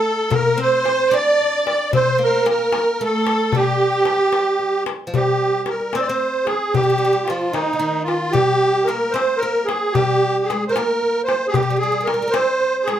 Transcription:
Already playing: A3 A4
0.30 A#3 A#4, darbuka dum
0.57 C4 C5, darbuka ka
0.62 C5
0.85 darbuka tek
0.99 darbuka ka
1.11 D4 D5, darbuka tek
1.15 D5
1.41 darbuka ka
1.67 D5, darbuka tek
1.93 C4 C5, darbuka dum
2.19 A#3, darbuka ka
2.24 A#4
2.46 A#3 A#4, darbuka tek
2.59 darbuka ka
2.72 darbuka tek
2.93 A#4
2.99 A3 A4, darbuka ka
3.04 A4
3.27 darbuka tek
3.52 G3 G4, darbuka dum
3.80 darbuka ka
4.05 darbuka tek
4.19 darbuka ka
4.33 darbuka tek
4.59 darbuka ka
4.86 darbuka tek
5.07 F3
5.14 G3 G4, darbuka dum
5.40 darbuka ka
5.66 A#4, darbuka tek
5.80 darbuka ka
5.93 C4 C5, darbuka tek
6.00 D5
6.05 C5
6.09 C4
6.20 darbuka ka
6.46 G#4, darbuka tek
6.74 G3 G4, darbuka dum
6.83 G3
6.90 G3
6.98 G3, darbuka ka
7.05 G3
7.13 G3
7.25 F4, darbuka tek
7.30 F3
7.41 darbuka ka
7.52 D#3 D#4, darbuka tek
7.73 D3
7.79 D#3, darbuka ka
8.04 F4
8.08 darbuka tek
8.31 G3 G4, darbuka dum
8.61 darbuka ka
8.85 A#3 A#4, darbuka tek
9.02 darbuka ka
9.11 C4 C5
9.16 darbuka tek
9.37 A#4
9.42 A#3, darbuka ka
9.65 G#4, darbuka tek
9.93 G3 G4, darbuka dum
10.23 darbuka ka
10.44 G#4
10.50 G#3, darbuka tek
10.68 G#3 A#4 C5
10.76 A#3, darbuka tek
11.03 darbuka ka
11.24 C5
11.29 darbuka tek
11.47 G4 G#4
11.54 G3, darbuka dum
11.63 G3
11.70 G3
11.77 G3 G#4
11.82 G3, darbuka ka
11.92 G3
12.01 G3 A#4
12.07 G3, darbuka tek
12.14 G3
12.21 G3, darbuka ka
12.28 A#3 C5
12.34 C4, darbuka tek
12.61 darbuka ka
12.84 G#4
12.88 G#3, darbuka tek

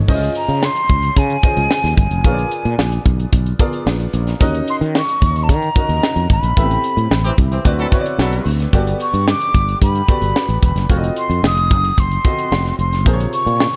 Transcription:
Already playing: B3 D#4 A4 C#5
0.08 C#2 C#4 E4 G#4 C5 D#5, kick, crash
0.15 F4
0.23 closed hi-hat
0.35 A#5, closed hi-hat
0.48 C#3, closed hi-hat
0.63 C6, snare
0.76 closed hi-hat
0.89 C#2, kick, closed hi-hat
1.03 closed hi-hat
1.16 C#3 G#5, kick, closed hi-hat
1.30 closed hi-hat
1.43 C#4 F4 G#4 C5 D#5, kick, closed hi-hat
1.57 C#2, closed hi-hat
1.71 snare
1.84 D#2, snare, closed hi-hat
1.97 G1 G#5, kick, closed hi-hat
2.11 F1, closed hi-hat
2.24 A#1 B3 F4 G#4 A#4 C#5, kick, closed hi-hat
2.32 D5
2.38 closed hi-hat
2.51 closed hi-hat
2.65 A#2, closed hi-hat
2.78 A#1, snare
2.92 closed hi-hat
3.05 B1, kick, closed hi-hat
3.20 closed hi-hat
3.33 B1, kick, closed hi-hat
3.46 closed hi-hat
3.59 B3 F4 G#4 A#4 D5, kick, closed hi-hat
3.73 closed hi-hat
3.86 A#1, snare
4.00 closed hi-hat
4.13 A#1, closed hi-hat
4.27 snare, closed hi-hat
4.40 D#2 C#4 D#4 F#4 A#4 D#5, kick, closed hi-hat
4.55 closed hi-hat
4.68 C6, closed hi-hat
4.81 D#3, closed hi-hat
4.95 C#6, snare
5.08 closed hi-hat
5.22 D#2, kick, closed hi-hat
5.36 closed hi-hat
5.43 A5
5.49 D#3 A#5, kick, closed hi-hat
5.63 closed hi-hat
5.75 C#4 D#4 F#4 A#4 D#5, kick, closed hi-hat
5.89 D#2, closed hi-hat
6.03 snare
6.16 F2, closed hi-hat
6.30 G#1 B5, kick, closed hi-hat
6.43 A#1, closed hi-hat
6.56 A1 B3 E4 G4 A4 E5, kick, closed hi-hat
6.63 C4
6.71 closed hi-hat
6.84 closed hi-hat
6.97 A2, closed hi-hat
7.11 A1, snare
7.24 E3 C4 G4, closed hi-hat
7.38 C2, kick, closed hi-hat
7.52 E3 C4 G4, closed hi-hat
7.65 D2 C4 E4 F#4 B4 D5, kick, closed hi-hat
7.79 F#3 E4 A4, closed hi-hat
7.91 C4 E4 F#4 B4 C#5, kick, closed hi-hat
7.99 D5
8.06 closed hi-hat
8.18 B1 F#3 E4 A4, snare
8.32 closed hi-hat
8.46 D2, open hi-hat
8.60 snare, closed hi-hat
8.73 G1 B3 F#4 G4 A4 D5, kick, closed hi-hat
8.87 closed hi-hat
9.00 C#6, closed hi-hat
9.14 G2, closed hi-hat
9.28 D6, snare
9.41 closed hi-hat
9.54 G1, kick, closed hi-hat
9.68 closed hi-hat
9.82 G2 B5, kick, closed hi-hat
9.95 closed hi-hat
10.08 B3 F#4 G4 A4 D5, kick, closed hi-hat
10.22 G1, closed hi-hat
10.36 snare
10.49 A1, closed hi-hat
10.62 E1 B5, kick, closed hi-hat
10.76 F#1, snare, closed hi-hat
10.89 F1 C4 F4 F#4 A4 C#5, kick, closed hi-hat
10.97 D#5
11.04 closed hi-hat
11.16 C6, closed hi-hat
11.30 F2, closed hi-hat
11.43 F1 D#6, snare
11.57 closed hi-hat
11.71 F#1, kick, closed hi-hat
11.85 closed hi-hat
11.98 F#1 C6, kick, closed hi-hat
12.11 closed hi-hat
12.24 C4 F4 F#4 A4 D#5, kick, closed hi-hat
12.38 closed hi-hat
12.52 F1, snare
12.66 snare, closed hi-hat
12.79 F1 C6, closed hi-hat
12.93 snare, closed hi-hat
13.06 A#1 C3 F4 G#4 A#4 C5, kick, closed hi-hat
13.13 C#5
13.20 closed hi-hat
13.33 C#6, closed hi-hat
13.46 A#2, closed hi-hat
13.60 snare
13.73 closed hi-hat

